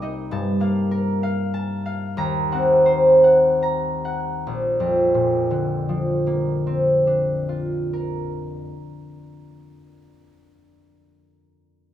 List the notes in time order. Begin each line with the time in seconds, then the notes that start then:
Already playing: C2 A#3 C4 A#4 C5 D6
0.02 D#4 D#5
0.31 G2 A5
0.60 A#3 F5
0.91 A#4
1.23 F5
1.54 A5
1.86 F5
2.17 D#2 A#5
2.52 C4 F#5
2.86 C5
3.24 F#5
3.62 A#5
4.05 F#5
4.47 A#1
4.80 F2
5.14 A#2
5.51 D3
5.89 F3
6.27 A#3
6.67 C4
7.07 D4
7.49 F4
7.93 A#4